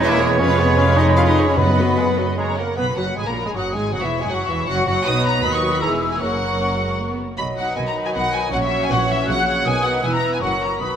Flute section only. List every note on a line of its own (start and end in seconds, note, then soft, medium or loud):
0.00 0.35 B5 medium
0.39 2.34 B5 medium
2.38 2.58 A#5 medium
3.16 3.52 B5 soft
3.55 3.94 D#6 soft
3.94 5.04 C#6 soft
5.05 5.43 B5 medium
5.44 5.81 D#6 medium
5.81 6.20 E6 medium
6.20 7.18 C#6 soft
7.75 8.48 B5 medium
8.51 9.27 C#6 medium
9.27 9.64 F#6 medium
9.66 10.03 D#6 medium
10.01 10.40 E6 medium
10.41 10.81 C#6 soft
10.80 10.96 D#6 soft